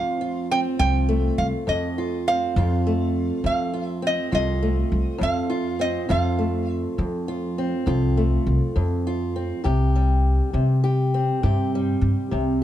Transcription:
Already playing: F2 F3 A3 C4 F4 F5
0.21 F4
0.51 C4 G5
0.79 C2 F2 F4 G5
1.09 A3
1.38 C2 F5
1.67 F2 D#5
1.98 F4
2.28 C4 F5
2.56 F2 F4
2.87 A3
3.44 F2 F3 F5
3.74 F4
3.85 E5
4.02 C4
4.07 D#5
4.31 C2 F2 F4 D#5
4.62 A3
4.92 C2
5.18 F2
5.23 F5
5.50 F4
5.79 C4 D#5
6.09 F2 F4 F5
6.39 A3
6.68 E5
6.98 F2 F3
7.28 F4
7.58 C4
7.86 C2 F2 F4
8.17 A3
8.46 C2
8.76 F2
9.07 F4
9.36 C4
9.64 C2 C3 G4
9.96 G3
10.53 C3
10.84 G4
11.14 C4
11.43 G2 C3 G4
11.75 G3
12.01 G2
12.31 C2 C3

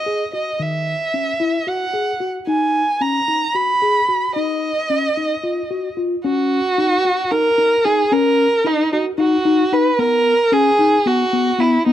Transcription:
Already playing: D#5
0.06 G#4
0.33 F#4 D#5
0.59 D#3 E5
1.14 C#4
1.40 E4
1.67 F#4 F#5
1.94 G#4
2.20 F#4
2.47 D#4 G#5
3.01 C#4 A#5
3.28 D#4
3.55 F#4 B5
3.82 G#4
4.09 F#4
4.36 D#4 D#5
4.90 C#4
5.17 D#4
5.43 F4
5.71 F#4
5.97 F4
6.24 C#4 F#4
6.78 D#4
7.05 F#4
7.31 D#4 A#4
7.58 D#4
7.85 D#4 G#4
8.12 C#4 A#4
8.65 D#4
8.93 D#4 F#4
9.18 D#4 F#4
9.45 D#4
9.73 D#4 B4
9.99 B3 A#4
10.52 C#4 G#4
10.79 D#4
11.06 B3 F#4
11.33 B3
11.58 B3 E4
11.86 B3 D#4

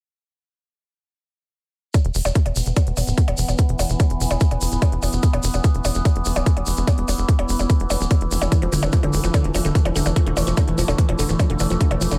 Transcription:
1.94 E3 B3, kick, closed hi-hat, percussion blips, shaker
2.05 E1, closed hi-hat
2.14 E1, open hi-hat, shaker
2.25 E1, closed hi-hat, percussion blips, shaker
2.35 kick, closed hi-hat, shaker
2.46 E1, closed hi-hat, percussion blips
2.56 E1, open hi-hat, shaker
2.66 E1, closed hi-hat, shaker
2.76 kick, closed hi-hat, percussion blips, shaker
2.87 E1, closed hi-hat
2.97 E1, open hi-hat, percussion blips, shaker
3.07 D1, closed hi-hat, shaker
3.18 kick, closed hi-hat, shaker
3.28 E1, closed hi-hat, percussion blips
3.37 E1, open hi-hat, shaker
3.48 E1, closed hi-hat, percussion blips, shaker
3.57 kick, closed hi-hat, shaker
3.69 E1, closed hi-hat
3.79 E1, open hi-hat, percussion blips, shaker
3.89 E1, closed hi-hat, shaker
4.00 kick, closed hi-hat, percussion blips, shaker
4.10 E1, closed hi-hat
4.20 E1, open hi-hat, shaker
4.30 E1, closed hi-hat, percussion blips, shaker
4.40 kick, closed hi-hat, shaker
4.51 E1, closed hi-hat, percussion blips
4.61 E1, open hi-hat, shaker
4.72 D1, closed hi-hat, shaker
4.82 kick, closed hi-hat, percussion blips, shaker
4.92 E1, closed hi-hat
5.02 E1, open hi-hat, percussion blips, shaker
5.13 E1, closed hi-hat, shaker
5.23 kick, closed hi-hat, shaker
5.33 E1, closed hi-hat, percussion blips
5.43 E1, open hi-hat, shaker
5.54 E1, closed hi-hat, percussion blips, shaker
5.64 kick, closed hi-hat, shaker
5.74 E1, closed hi-hat
5.85 E1, open hi-hat, percussion blips, shaker
5.95 E1, closed hi-hat, shaker
6.05 kick, closed hi-hat, percussion blips, shaker
6.16 E1, closed hi-hat
6.25 E1, open hi-hat, shaker
6.36 D1, closed hi-hat, percussion blips, shaker
6.46 kick, closed hi-hat, shaker
6.57 E1, closed hi-hat, percussion blips
6.66 E1, open hi-hat, shaker
6.77 E1, closed hi-hat, shaker
6.87 kick, closed hi-hat, percussion blips, shaker
6.98 E1, closed hi-hat
7.08 E1, open hi-hat, percussion blips, shaker
7.18 E1, closed hi-hat, shaker
7.29 kick, closed hi-hat, shaker
7.39 E1, closed hi-hat, percussion blips
7.49 E1, open hi-hat, shaker
7.59 E1, closed hi-hat, percussion blips, shaker
7.70 kick, closed hi-hat, shaker
7.80 E1, closed hi-hat
7.90 E1, open hi-hat, percussion blips, shaker
8.00 D1, closed hi-hat, shaker
8.11 kick, closed hi-hat, percussion blips, shaker
8.21 E1, closed hi-hat
8.31 E1, open hi-hat, shaker
8.42 E1, closed hi-hat, percussion blips, shaker
8.52 E3 A3, kick, closed hi-hat, percussion blips, shaker
8.62 E1 F3, closed hi-hat
8.72 E1 D3, open hi-hat, shaker
8.82 E1 E3, closed hi-hat, percussion blips, shaker
8.92 F3, kick, closed hi-hat, shaker
9.03 E1 D3, closed hi-hat, percussion blips
9.13 E1 E3, open hi-hat, shaker
9.24 E1 F3, closed hi-hat, shaker
9.34 D3, kick, closed hi-hat, percussion blips, shaker
9.44 E1 E3, closed hi-hat
9.55 E1 F3, open hi-hat, percussion blips, shaker
9.65 D1 D3, closed hi-hat, shaker
9.75 E3, kick, closed hi-hat, shaker
9.85 E1 F3, closed hi-hat, percussion blips
9.96 E1 D3, open hi-hat, shaker
10.06 E1 E3, closed hi-hat, percussion blips, shaker
10.16 F3, kick, closed hi-hat, shaker
10.26 E1 D3, closed hi-hat
10.37 E1 E3, open hi-hat, percussion blips, shaker
10.47 E1 F3, closed hi-hat, shaker
10.57 D3, kick, closed hi-hat, percussion blips, shaker
10.68 E1 E3, closed hi-hat
10.78 E1 F3, open hi-hat, shaker
10.88 E1 D3, closed hi-hat, percussion blips, shaker
10.98 E3, kick, closed hi-hat, shaker
11.09 E1 F3, closed hi-hat, percussion blips
11.19 E1 D3, open hi-hat, shaker
11.29 D1 E3, closed hi-hat, shaker
11.39 F3, kick, closed hi-hat, percussion blips, shaker
11.50 E1 D3, closed hi-hat
11.59 E1 E3, open hi-hat, percussion blips, shaker
11.70 E1 F3, closed hi-hat, shaker
11.81 D3, kick, closed hi-hat, shaker
11.91 E1 E3, closed hi-hat, percussion blips
12.01 E1 F3, open hi-hat, shaker
12.11 E1 D3, closed hi-hat, percussion blips, shaker

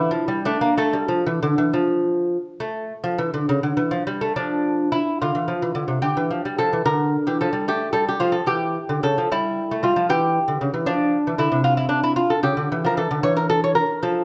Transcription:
Already playing: E4
0.11 F3
0.28 G3
0.45 A3 D4
0.61 A#3
0.78 A3 A4
0.93 G3
1.08 F3
1.27 E3
1.43 D3
1.58 E3
1.74 F3
2.60 A3
3.04 F3
3.19 E3
3.34 D3
3.49 C#3
3.63 D3
3.77 E3
3.91 F3
4.07 G3
4.21 A3
4.36 F3 D4
4.92 E4
5.22 D3 F4
5.35 E3
5.48 F3
5.62 E3
5.75 D3
5.88 C3
6.02 D3 G4
6.17 E3
6.31 F3
6.45 G3
6.58 F3 A4
6.73 E3
6.85 D3 A#4
7.27 E3 G4
7.41 F3 A4
7.53 G3
7.68 A3 G4
7.93 G3 A4
8.08 G4
8.20 F3 F4
8.32 A4
8.47 E3 G4
8.89 D3
9.03 C#3 A4
9.18 F3
9.32 G3 E4
9.71 A3
9.83 G3 F4
9.96 F3
10.09 E3 G4
10.48 D3
10.61 C#3
10.74 E3
10.86 F3 D4
11.27 E3
11.38 D3 E4
11.52 C3
11.64 F4
11.77 E4
11.89 D4
12.04 E4
12.16 F4
12.30 A4
12.43 C#3 G4
12.57 D3
12.72 E3
12.85 F3 A#4
12.97 E3 A4
13.11 D3
13.23 E3 C#5
13.37 A#4
13.50 A4
13.64 C#5
13.75 A#4
14.03 F3 A4

